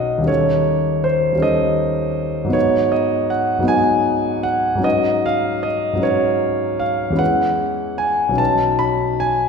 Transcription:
Already playing: B1 F#3 C#4 D#4 B4 D#5 F5 F#5
0.18 D#2 G3
0.22 C#4 D#4
0.27 A4 C#5
1.04 C5
1.33 D#2 G3
1.37 C#4 D#4
1.41 A4 D#5
2.44 G#2 F#3
2.49 B3 D#4 B4
2.53 C#5
2.92 D#5
3.30 F#5
3.59 G#2 F#3 B3
3.65 D#4 B4 G#5
4.43 F#5
4.75 G#2 F#3
4.79 C#4 D#4 B4
4.84 D#5
5.26 F5
5.63 D#5
5.93 G#2 F#3
5.98 C#4 D#4
6.02 B4 C#5
6.79 F5
7.10 E2 G#3
7.14 C#4 E4 B4
7.19 F#5
7.98 G#5
8.29 B1 F#3
8.33 C#4 D#4
8.37 B4 A5
8.79 B5
9.20 G#5

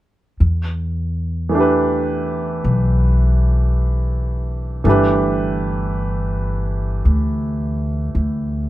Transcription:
0.40 E2
1.49 E3 A3
1.54 D4 G4
1.60 B4
2.64 B1
4.84 G1 E3 A3 D4 G4
4.89 B4
7.05 D2
8.15 D2

